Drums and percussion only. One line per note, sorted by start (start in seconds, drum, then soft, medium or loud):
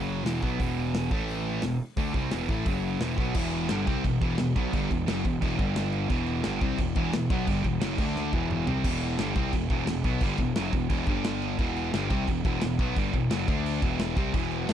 0.26 snare loud
0.26 open hi-hat medium
0.43 kick loud
0.60 kick loud
0.60 open hi-hat medium
0.94 snare loud
0.94 open hi-hat medium
1.11 kick loud
1.28 open hi-hat medium
1.62 snare loud
1.62 open hi-hat medium
1.97 kick loud
1.97 open hi-hat medium
2.14 kick medium
2.31 snare loud
2.31 open hi-hat medium
2.49 kick loud
2.66 kick loud
2.66 open hi-hat medium
3.00 snare loud
3.00 open hi-hat medium
3.18 kick loud
3.35 kick loud
3.35 crash loud
3.35 crash medium
3.52 crash medium
3.69 snare loud
3.69 crash medium
3.87 kick loud
3.87 crash medium
4.05 kick loud
4.05 crash medium
4.21 kick loud
4.21 crash medium
4.38 snare loud
4.38 crash loud
4.56 kick loud
4.56 crash medium
4.73 kick loud
4.73 crash medium
4.91 kick medium
4.91 crash medium
5.08 snare loud
5.08 crash loud
5.25 kick loud
5.25 crash medium
5.42 kick loud
5.42 crash medium
5.59 kick loud
5.59 crash medium
5.76 snare loud
5.76 crash medium
5.93 crash medium
6.10 kick loud
6.10 crash medium
6.26 crash medium
6.44 snare loud
6.44 crash medium
6.61 kick loud
6.61 crash medium
6.78 kick loud
6.78 crash medium
6.95 kick loud
6.95 crash medium
7.13 snare loud
7.13 crash medium
7.30 kick loud
7.30 crash medium
7.47 kick loud
7.47 crash loud
7.64 kick medium
7.64 crash medium
7.81 snare loud
7.81 crash loud
7.98 kick loud
7.98 crash loud
8.16 snare medium
8.33 kick loud
8.51 mid tom medium
8.67 floor tom loud
8.84 kick loud
8.84 crash loud
8.84 crash medium
9.01 crash medium
9.19 snare loud
9.19 crash medium
9.36 kick loud
9.36 crash medium
9.53 kick medium
9.53 crash medium
9.70 kick loud
9.70 crash medium
9.87 snare loud
9.87 crash loud
10.04 kick loud
10.04 crash medium
10.21 kick loud
10.21 crash loud
10.38 kick medium
10.38 crash medium
10.56 snare loud
10.56 crash medium
10.73 kick loud
10.73 crash medium
10.90 kick loud
10.90 crash medium
11.06 kick loud
11.06 crash medium
11.24 snare loud
11.24 crash medium
11.42 crash medium
11.59 kick loud
11.59 crash medium
11.77 crash medium
11.94 snare loud
11.94 crash medium
12.10 kick loud
12.10 crash medium
12.28 kick medium
12.28 crash medium
12.45 kick loud
12.45 crash medium
12.61 snare loud
12.61 crash loud
12.79 kick loud
12.79 crash medium
12.96 kick loud
12.96 crash medium
13.14 kick medium
13.14 crash medium
13.31 snare loud
13.31 crash loud
13.48 kick loud
13.48 crash medium
13.66 crash loud
13.82 kick loud
13.82 crash medium
13.99 snare loud
13.99 crash medium
14.17 kick loud
14.17 crash medium
14.34 kick loud
14.34 crash medium
14.51 crash medium
14.69 snare loud
14.69 crash medium